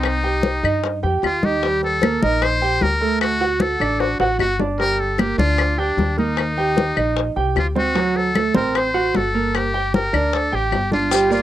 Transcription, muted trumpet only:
0.00 0.99 D#4 medium
1.24 1.46 F4 medium
1.45 1.83 G4 medium
1.84 2.24 A4 medium
2.23 2.44 A#4 medium
2.42 2.84 C5 medium
2.82 3.20 A#4 medium
3.21 3.63 F#4 medium
3.61 4.01 A4 medium
4.00 4.19 F#4 medium
4.20 4.38 F#4 medium
4.40 4.58 F#4 medium
4.80 5.01 A#4 medium
5.00 5.21 A4 medium
5.20 5.38 G4 medium
5.39 5.81 F4 medium
5.79 6.18 D4 medium
6.19 7.33 D#4 medium
7.58 7.67 F4 medium
7.78 8.18 F#4 medium
8.17 8.56 A4 medium
8.56 8.78 A#4 medium
8.77 9.18 C5 medium
9.16 9.57 A4 medium
9.56 9.94 G4 medium
9.95 10.36 A#4 medium
10.34 10.57 A4 medium
10.55 10.93 G4 medium
10.93 11.29 F4 medium
11.33 11.42 F4 medium

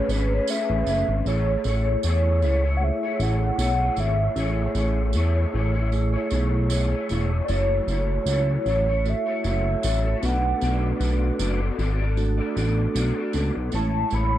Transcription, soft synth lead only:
0.00 0.12 C#5 medium
0.11 0.35 B4 medium
0.33 0.51 C#5 loud
0.50 1.27 E5 loud
1.28 1.63 C#5 loud
1.66 2.78 C#5 medium
2.77 2.85 F#5 medium
2.84 3.23 E5 medium
3.22 4.01 F#5 loud
4.00 4.77 E5 loud
7.44 7.52 D5 medium
7.51 7.89 C#5 loud
7.91 9.11 C#5 loud
9.09 9.46 E5 medium
9.49 10.27 E5 loud
10.25 11.01 F#5 loud
13.75 14.16 A5 loud
14.14 14.38 B5 loud

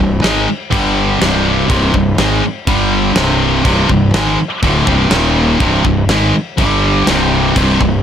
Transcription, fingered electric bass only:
0.00 0.22 C1 medium
0.23 0.46 G#1 medium
0.72 1.18 G1 medium
1.21 1.67 C1 medium
1.70 1.93 C1 loud
1.94 2.17 C1 medium
2.18 2.41 G#1 medium
2.67 3.13 G1 medium
3.16 3.62 C1 medium
3.65 3.88 C1 loud
3.89 4.12 C1 medium
4.14 4.37 G#1 medium
4.63 4.86 D1 medium
4.87 5.10 C1 loud
5.11 5.57 D#1 medium
5.60 5.83 C1 medium
5.85 6.08 C1 medium
6.08 6.32 G#1 medium
6.58 7.04 G1 medium
7.07 7.53 C1 medium
7.56 7.79 C1 loud
7.81 8.03 C1 medium

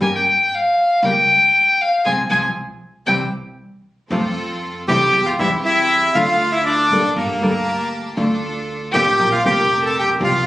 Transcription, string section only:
0.02 0.23 C#4 medium
0.02 0.23 G4 medium
0.02 0.23 A#4 medium
1.02 1.24 C#4 medium
1.02 1.24 G4 medium
1.02 1.24 A#4 medium
2.04 2.21 C4 medium
2.04 2.21 F4 medium
2.04 2.21 G#4 medium
2.29 2.46 C4 medium
2.29 2.46 F4 medium
2.29 2.46 G#4 medium
3.06 3.23 C4 medium
3.06 3.23 E4 medium
3.06 3.23 G4 medium
4.10 4.84 C4 medium
4.10 4.84 F4 medium
4.10 4.84 A4 loud
4.88 5.09 C4 medium
4.88 5.09 F4 medium
4.88 5.09 A4 medium
5.13 5.35 C4 medium
5.13 5.35 E4 medium
5.13 5.35 G4 medium
5.38 6.11 C4 medium
5.38 6.11 E4 medium
5.38 6.11 G4 loud
6.15 6.88 D4 medium
6.15 6.88 F4 medium
6.15 6.88 A4 loud
6.91 7.13 D4 medium
6.91 7.13 F4 medium
6.91 7.13 A4 medium
7.17 7.38 A#3 medium
7.17 7.38 G4 medium
7.17 7.38 A4 medium
7.41 8.14 A#3 medium
7.41 8.14 G4 medium
7.41 8.14 A5 loud
8.16 8.89 D4 medium
8.16 8.89 F4 medium
8.16 8.89 A4 loud
8.93 9.15 D4 medium
8.93 9.15 F4 medium
8.93 9.15 A4 medium
9.18 9.40 C4 medium
9.18 9.40 D4 medium
9.18 9.40 A#4 medium
9.43 10.16 C4 medium
9.43 10.17 D4 medium
9.43 10.16 A#4 loud
10.20 10.47 C4 medium
10.20 10.47 F4 medium
10.20 10.47 G4 loud

